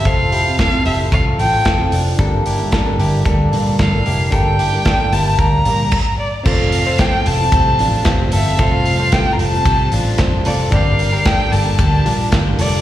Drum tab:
CC |--------|--------|------x-|x-------|
RD |--------|--------|--------|--x-x-x-|
HH |xoxoxoxo|xoxoxoxo|xoxoxo--|-opopopo|
SD |--o---o-|--o---o-|--o-----|--o---o-|
BD |o-o-o-o-|o-o-o-o-|o-o-o-o-|o-o-o-o-|

CC |--------|--------|
RD |x-x-x-x-|x-x-x-x-|
HH |-opopopo|po-opopo|
SD |--o---o-|--o---o-|
BD |o-o-o-o-|o-o-o-o-|